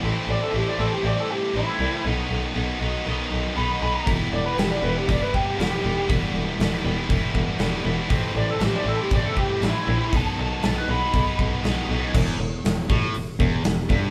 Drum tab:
CC |--------|--------|--------|--------|
HH |--------|--------|o-o-o-o-|o-o-o-o-|
SD |--------|--------|--o---o-|--o---o-|
BD |--------|--------|o---oo--|o---oo--|

CC |--------|--------|x-------|
HH |o-o-o-o-|o-o-o-o-|--o-o-o-|
SD |--o---o-|--o---o-|--o---o-|
BD |o---oo--|o---oo--|o--o-o-o|